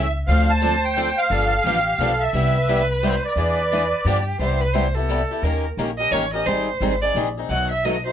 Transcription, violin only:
Already playing: E5
0.28 C5
1.31 A4
1.66 G4
2.00 A4
2.33 B4
3.38 B4
4.06 G4
4.41 C5
4.61 B4
4.73 C5
4.94 A4
5.43 A#4
5.98 D#5
6.12 C#5
6.34 D#5
6.46 C5
7.02 D5
7.50 F#5
7.71 E5
7.85 D#5
8.06 C5

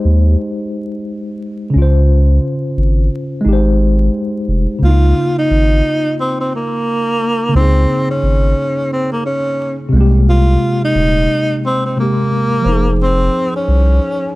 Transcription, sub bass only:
0.05 D#2
1.75 C#2
2.77 G#1
3.45 G#1
4.48 F1
4.82 C#2
5.51 G#1
7.55 C#2
8.23 G#1
9.93 C2
10.95 D#1
12.65 F1
13.68 C2

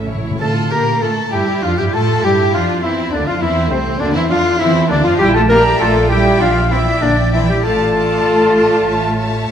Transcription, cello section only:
Already playing: A2
0.41 A3
0.72 A#3
1.03 A3
1.33 G3
1.64 F3
1.79 G3
1.94 A3
2.25 G3
2.55 F3
2.84 E3
3.14 D3
3.29 F3
3.43 E3
3.72 C3
4.01 D3
4.16 E3
4.30 F3
4.61 E3
4.90 D3
5.05 F3
5.20 G3
5.35 A3
5.50 A#3
5.80 A3
6.10 G3
6.40 F3
6.71 E3
7.02 D3
7.33 E3
7.49 G3
7.64 A3

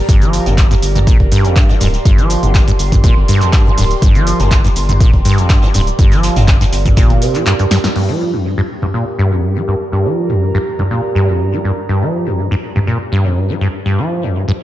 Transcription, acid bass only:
0.09 G2
0.22 F3
0.46 F2
0.58 G2
0.71 G2
0.95 G2
1.07 A#2
1.32 G2
1.45 F2
1.56 G2
1.69 G3
1.81 G2
2.05 G2
2.18 F3
2.43 F2
2.55 G2
2.68 G2
2.92 G2
3.04 A#2
3.28 G2
3.41 F2
3.53 G2
3.66 G3
3.78 G2
4.02 G2
4.15 F3
4.40 F2
4.51 G2
4.64 G2
4.89 G2
5.00 A#2
5.25 G2
5.38 F2
5.50 G2
5.63 G3
5.74 G2
5.99 G2
6.12 F3
6.36 F2
6.48 G2
6.61 G2
6.86 G2
6.97 A#2
7.22 C3
7.35 F3
7.46 G2
7.59 G2
7.71 G2
7.84 G2
7.96 G2
8.09 F3
8.33 F2
8.45 G2
8.58 G2
8.82 G2
8.94 A#2
9.19 G2
9.32 F2
9.43 G2
9.56 G3
9.68 G2
9.92 G2
10.05 F3
10.30 F2
10.42 G2
10.54 G2
10.79 G2
10.91 A#2
11.15 G2
11.28 F2
11.40 G2
11.53 G3
11.64 G2
11.89 G2
12.02 F3
12.27 F2
12.38 G2
12.51 G2
12.76 G2
12.87 A#2
13.12 G2
13.25 F2
13.37 G2
13.49 G3
13.61 G2
13.86 G2
13.99 F3
14.23 F2
14.35 G2
14.48 G2

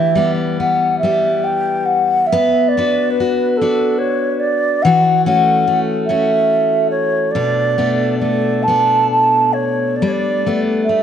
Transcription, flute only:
Already playing: E5
0.59 F#5
0.98 E5
1.44 G5
1.85 F#5
2.26 E5
2.68 D5
3.10 B4
3.57 A4
3.98 C#5
4.39 D5
4.82 F#5
5.25 F#5
6.06 E5
6.90 C#5
7.31 D5
8.19 D5
8.63 A5
9.11 A5
9.53 C#5
9.96 D5
10.08 C#5
10.12 D5
10.83 E5

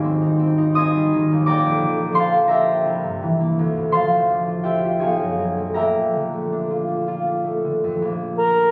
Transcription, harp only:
Already playing: G#1 D#2 D#3 G3 G4 G#4 C5 D5 F5 G#5
0.04 C4
0.22 D#4
0.39 C4
0.58 D#4
0.75 C4 D#5 G#5 C6 D#6
0.95 G3
1.13 D#3
1.31 D#2
1.46 A#1 D5 G5 A#5 D6
1.66 F2
1.82 D3
2.00 F3
2.12 D4 C5 C6
2.17 F5 A5
2.34 G4
2.48 D4 A#4 E5 G5 A#5
2.67 F4
2.85 C2
3.04 G2
3.23 E3
3.40 A#3
3.59 D2
3.76 A2
3.92 F3 C5 F5 A5 C6
4.11 A3
4.30 D4
4.47 F4
4.64 D4 G4 C5 E5 G5
4.85 F4
4.99 B1 G#4 C#5 G#5
5.03 F5
5.21 F#2
5.39 F#3
5.58 A3
5.74 A#1 A#4 E5 G5 A#5
5.95 F2
6.14 D3
6.33 A3
6.52 D4
6.70 F4
6.88 D4
7.08 F4
7.27 D4
7.44 A3
7.64 D3
7.84 F2
8.02 A#1

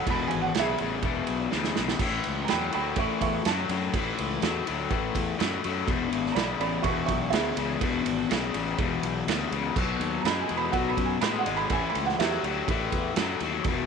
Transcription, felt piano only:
0.10 B5
0.28 G#5
0.42 F#5
0.58 G#4 E5
2.45 A#5
2.50 G5 B5
2.75 G5 B5
2.99 E5 C#6
3.22 E5 C#6
3.47 A5
6.32 D5 A#5 B5
6.61 D5 B5
6.82 E5 C#6
7.06 E5 C#6
7.30 G#4 E5
10.21 A#5
10.26 B5
10.41 G#5
10.57 B5
10.72 F#5
10.89 B5
11.06 G#5
11.21 B5
11.39 F#5
11.57 B5
11.73 G#5
11.90 B5
12.06 F#5
12.19 G4 E5

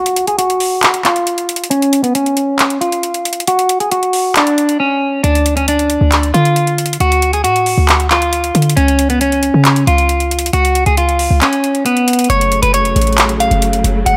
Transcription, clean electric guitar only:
Already playing: F#4
0.28 G#4
0.38 F#4
1.05 F4
1.70 C#4
2.03 B3
2.15 C#4
2.81 F4
3.48 F#4
3.80 G#4
3.92 F#4
4.37 D4
4.80 C#4
5.24 D4
5.57 C#4
5.68 D4
6.34 F4
7.01 F#4
7.34 G#4
7.44 F#4
8.11 F4
8.77 C#4
9.10 B3
9.21 C#4
9.87 F4
10.53 F#4
10.86 G#4
10.98 F4
11.42 C#4
11.86 B3
12.30 C#5
12.62 B4
12.74 C#5
13.40 F5
14.06 F#5

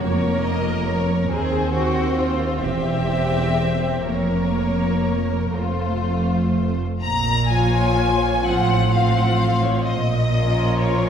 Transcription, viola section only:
Already playing: A#3
1.31 C4
2.62 C4
4.05 A#3
5.52 A3
7.50 F3 F4
8.46 F3 C4
8.92 F3 C4
10.32 F3 C#4

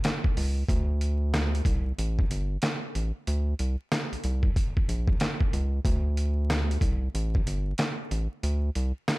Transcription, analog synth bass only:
0.37 C#2
0.69 D2
1.65 C2
1.98 A1
2.31 G1
2.95 A1
3.27 D2
3.60 C2
4.12 C2
4.24 C2
4.89 A#1
5.53 C#2
5.85 D2
6.82 C2
7.15 A1
7.47 G1
8.11 A1
8.43 D2
8.76 C2

